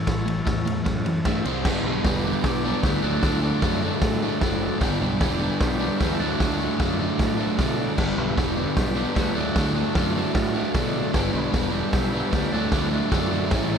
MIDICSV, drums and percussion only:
0, 0, Header, 1, 2, 480
1, 0, Start_track
1, 0, Tempo, 395517
1, 85, Time_signature, 4, 2, 24, 8
1, 16723, End_track
2, 0, Start_track
2, 0, Title_t, "Drums"
2, 88, Note_on_c, 9, 36, 112
2, 88, Note_on_c, 9, 38, 105
2, 88, Note_on_c, 9, 51, 92
2, 209, Note_off_c, 9, 36, 0
2, 210, Note_off_c, 9, 38, 0
2, 210, Note_off_c, 9, 51, 0
2, 337, Note_on_c, 9, 51, 69
2, 458, Note_off_c, 9, 51, 0
2, 567, Note_on_c, 9, 36, 117
2, 571, Note_on_c, 9, 38, 120
2, 571, Note_on_c, 9, 51, 87
2, 689, Note_off_c, 9, 36, 0
2, 693, Note_off_c, 9, 38, 0
2, 693, Note_off_c, 9, 51, 0
2, 817, Note_on_c, 9, 51, 69
2, 938, Note_off_c, 9, 51, 0
2, 1045, Note_on_c, 9, 36, 111
2, 1046, Note_on_c, 9, 38, 113
2, 1046, Note_on_c, 9, 51, 91
2, 1167, Note_off_c, 9, 36, 0
2, 1167, Note_off_c, 9, 38, 0
2, 1167, Note_off_c, 9, 51, 0
2, 1284, Note_on_c, 9, 51, 65
2, 1406, Note_off_c, 9, 51, 0
2, 1519, Note_on_c, 9, 38, 119
2, 1519, Note_on_c, 9, 51, 95
2, 1521, Note_on_c, 9, 36, 108
2, 1640, Note_off_c, 9, 38, 0
2, 1640, Note_off_c, 9, 51, 0
2, 1643, Note_off_c, 9, 36, 0
2, 1766, Note_on_c, 9, 51, 68
2, 1887, Note_off_c, 9, 51, 0
2, 2003, Note_on_c, 9, 36, 109
2, 2003, Note_on_c, 9, 38, 121
2, 2003, Note_on_c, 9, 49, 121
2, 2124, Note_off_c, 9, 36, 0
2, 2124, Note_off_c, 9, 38, 0
2, 2124, Note_off_c, 9, 49, 0
2, 2483, Note_on_c, 9, 36, 117
2, 2483, Note_on_c, 9, 38, 118
2, 2483, Note_on_c, 9, 46, 71
2, 2604, Note_off_c, 9, 38, 0
2, 2604, Note_off_c, 9, 46, 0
2, 2605, Note_off_c, 9, 36, 0
2, 2961, Note_on_c, 9, 36, 116
2, 2961, Note_on_c, 9, 38, 113
2, 2961, Note_on_c, 9, 46, 67
2, 3083, Note_off_c, 9, 36, 0
2, 3083, Note_off_c, 9, 38, 0
2, 3083, Note_off_c, 9, 46, 0
2, 3439, Note_on_c, 9, 36, 117
2, 3440, Note_on_c, 9, 38, 111
2, 3440, Note_on_c, 9, 46, 67
2, 3561, Note_off_c, 9, 36, 0
2, 3561, Note_off_c, 9, 38, 0
2, 3561, Note_off_c, 9, 46, 0
2, 3917, Note_on_c, 9, 38, 114
2, 3917, Note_on_c, 9, 46, 62
2, 3918, Note_on_c, 9, 36, 116
2, 4039, Note_off_c, 9, 38, 0
2, 4039, Note_off_c, 9, 46, 0
2, 4040, Note_off_c, 9, 36, 0
2, 4397, Note_on_c, 9, 36, 118
2, 4398, Note_on_c, 9, 38, 114
2, 4398, Note_on_c, 9, 46, 62
2, 4518, Note_off_c, 9, 36, 0
2, 4519, Note_off_c, 9, 38, 0
2, 4519, Note_off_c, 9, 46, 0
2, 4875, Note_on_c, 9, 38, 121
2, 4875, Note_on_c, 9, 46, 67
2, 4876, Note_on_c, 9, 36, 118
2, 4996, Note_off_c, 9, 38, 0
2, 4996, Note_off_c, 9, 46, 0
2, 4997, Note_off_c, 9, 36, 0
2, 5357, Note_on_c, 9, 38, 115
2, 5357, Note_on_c, 9, 46, 65
2, 5358, Note_on_c, 9, 36, 107
2, 5478, Note_off_c, 9, 38, 0
2, 5478, Note_off_c, 9, 46, 0
2, 5480, Note_off_c, 9, 36, 0
2, 5839, Note_on_c, 9, 36, 119
2, 5843, Note_on_c, 9, 38, 111
2, 5843, Note_on_c, 9, 46, 64
2, 5961, Note_off_c, 9, 36, 0
2, 5964, Note_off_c, 9, 38, 0
2, 5964, Note_off_c, 9, 46, 0
2, 6321, Note_on_c, 9, 38, 115
2, 6321, Note_on_c, 9, 46, 69
2, 6322, Note_on_c, 9, 36, 116
2, 6443, Note_off_c, 9, 36, 0
2, 6443, Note_off_c, 9, 38, 0
2, 6443, Note_off_c, 9, 46, 0
2, 6803, Note_on_c, 9, 38, 120
2, 6803, Note_on_c, 9, 46, 74
2, 6805, Note_on_c, 9, 36, 120
2, 6924, Note_off_c, 9, 38, 0
2, 6924, Note_off_c, 9, 46, 0
2, 6926, Note_off_c, 9, 36, 0
2, 7289, Note_on_c, 9, 36, 112
2, 7290, Note_on_c, 9, 38, 121
2, 7290, Note_on_c, 9, 46, 67
2, 7410, Note_off_c, 9, 36, 0
2, 7411, Note_off_c, 9, 38, 0
2, 7411, Note_off_c, 9, 46, 0
2, 7771, Note_on_c, 9, 36, 111
2, 7771, Note_on_c, 9, 38, 117
2, 7771, Note_on_c, 9, 46, 66
2, 7892, Note_off_c, 9, 36, 0
2, 7892, Note_off_c, 9, 38, 0
2, 7892, Note_off_c, 9, 46, 0
2, 8250, Note_on_c, 9, 36, 122
2, 8252, Note_on_c, 9, 38, 117
2, 8252, Note_on_c, 9, 46, 60
2, 8372, Note_off_c, 9, 36, 0
2, 8373, Note_off_c, 9, 38, 0
2, 8373, Note_off_c, 9, 46, 0
2, 8731, Note_on_c, 9, 36, 121
2, 8733, Note_on_c, 9, 38, 122
2, 8733, Note_on_c, 9, 46, 61
2, 8852, Note_off_c, 9, 36, 0
2, 8854, Note_off_c, 9, 38, 0
2, 8854, Note_off_c, 9, 46, 0
2, 9208, Note_on_c, 9, 36, 114
2, 9208, Note_on_c, 9, 38, 110
2, 9208, Note_on_c, 9, 46, 66
2, 9329, Note_off_c, 9, 38, 0
2, 9329, Note_off_c, 9, 46, 0
2, 9330, Note_off_c, 9, 36, 0
2, 9685, Note_on_c, 9, 36, 108
2, 9686, Note_on_c, 9, 38, 106
2, 9686, Note_on_c, 9, 57, 104
2, 9806, Note_off_c, 9, 36, 0
2, 9808, Note_off_c, 9, 38, 0
2, 9808, Note_off_c, 9, 57, 0
2, 10164, Note_on_c, 9, 36, 114
2, 10168, Note_on_c, 9, 38, 120
2, 10168, Note_on_c, 9, 46, 64
2, 10285, Note_off_c, 9, 36, 0
2, 10289, Note_off_c, 9, 38, 0
2, 10289, Note_off_c, 9, 46, 0
2, 10640, Note_on_c, 9, 38, 116
2, 10640, Note_on_c, 9, 46, 67
2, 10641, Note_on_c, 9, 36, 127
2, 10761, Note_off_c, 9, 38, 0
2, 10761, Note_off_c, 9, 46, 0
2, 10763, Note_off_c, 9, 36, 0
2, 11121, Note_on_c, 9, 36, 113
2, 11123, Note_on_c, 9, 38, 112
2, 11123, Note_on_c, 9, 46, 67
2, 11242, Note_off_c, 9, 36, 0
2, 11244, Note_off_c, 9, 38, 0
2, 11244, Note_off_c, 9, 46, 0
2, 11600, Note_on_c, 9, 36, 112
2, 11600, Note_on_c, 9, 38, 118
2, 11600, Note_on_c, 9, 46, 69
2, 11721, Note_off_c, 9, 36, 0
2, 11721, Note_off_c, 9, 38, 0
2, 11721, Note_off_c, 9, 46, 0
2, 12079, Note_on_c, 9, 38, 121
2, 12079, Note_on_c, 9, 46, 71
2, 12081, Note_on_c, 9, 36, 120
2, 12200, Note_off_c, 9, 38, 0
2, 12200, Note_off_c, 9, 46, 0
2, 12202, Note_off_c, 9, 36, 0
2, 12559, Note_on_c, 9, 38, 116
2, 12559, Note_on_c, 9, 46, 62
2, 12561, Note_on_c, 9, 36, 120
2, 12680, Note_off_c, 9, 38, 0
2, 12680, Note_off_c, 9, 46, 0
2, 12682, Note_off_c, 9, 36, 0
2, 13042, Note_on_c, 9, 36, 120
2, 13044, Note_on_c, 9, 38, 118
2, 13044, Note_on_c, 9, 46, 62
2, 13163, Note_off_c, 9, 36, 0
2, 13165, Note_off_c, 9, 38, 0
2, 13165, Note_off_c, 9, 46, 0
2, 13522, Note_on_c, 9, 38, 116
2, 13522, Note_on_c, 9, 46, 63
2, 13523, Note_on_c, 9, 36, 118
2, 13643, Note_off_c, 9, 38, 0
2, 13643, Note_off_c, 9, 46, 0
2, 13645, Note_off_c, 9, 36, 0
2, 14003, Note_on_c, 9, 36, 113
2, 14005, Note_on_c, 9, 38, 118
2, 14005, Note_on_c, 9, 46, 63
2, 14124, Note_off_c, 9, 36, 0
2, 14127, Note_off_c, 9, 38, 0
2, 14127, Note_off_c, 9, 46, 0
2, 14479, Note_on_c, 9, 38, 116
2, 14479, Note_on_c, 9, 46, 67
2, 14481, Note_on_c, 9, 36, 121
2, 14600, Note_off_c, 9, 38, 0
2, 14600, Note_off_c, 9, 46, 0
2, 14603, Note_off_c, 9, 36, 0
2, 14962, Note_on_c, 9, 36, 113
2, 14962, Note_on_c, 9, 38, 109
2, 14962, Note_on_c, 9, 46, 66
2, 15083, Note_off_c, 9, 36, 0
2, 15084, Note_off_c, 9, 38, 0
2, 15084, Note_off_c, 9, 46, 0
2, 15435, Note_on_c, 9, 38, 112
2, 15435, Note_on_c, 9, 46, 66
2, 15438, Note_on_c, 9, 36, 112
2, 15557, Note_off_c, 9, 38, 0
2, 15557, Note_off_c, 9, 46, 0
2, 15559, Note_off_c, 9, 36, 0
2, 15921, Note_on_c, 9, 36, 112
2, 15923, Note_on_c, 9, 38, 115
2, 15923, Note_on_c, 9, 46, 69
2, 16042, Note_off_c, 9, 36, 0
2, 16044, Note_off_c, 9, 38, 0
2, 16044, Note_off_c, 9, 46, 0
2, 16398, Note_on_c, 9, 38, 120
2, 16398, Note_on_c, 9, 46, 68
2, 16402, Note_on_c, 9, 36, 124
2, 16519, Note_off_c, 9, 38, 0
2, 16519, Note_off_c, 9, 46, 0
2, 16523, Note_off_c, 9, 36, 0
2, 16723, End_track
0, 0, End_of_file